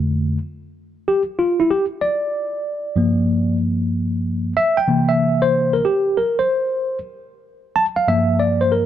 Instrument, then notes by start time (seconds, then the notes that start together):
tine electric piano
Already playing: F2 D3 A3
1.08 G4
1.39 F4
1.60 E4
1.70 G4
2.01 D5
2.96 G2 F3 A#3
4.57 E5
4.77 G5
4.88 C3 E3 A#3
5.09 E5
5.42 C5
5.73 A#4
5.85 G4
6.17 A#4
6.39 C5
7.76 A5
7.96 F5
8.08 G2 F3 A#3 E5
8.40 D5
8.61 C5
8.72 A#4